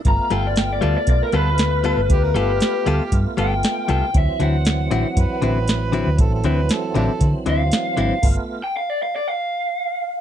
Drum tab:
CC |--------|--------|--------|--------|
HH |xxxxxxxx|xxxxxxxx|xxxxxxxx|xxxxxxxx|
SD |--o---o-|--o---o-|--o---o-|--o---o-|
BD |o---o---|o---o---|o---o---|o---o---|

CC |x-------|
HH |x-------|
SD |--------|
BD |o-------|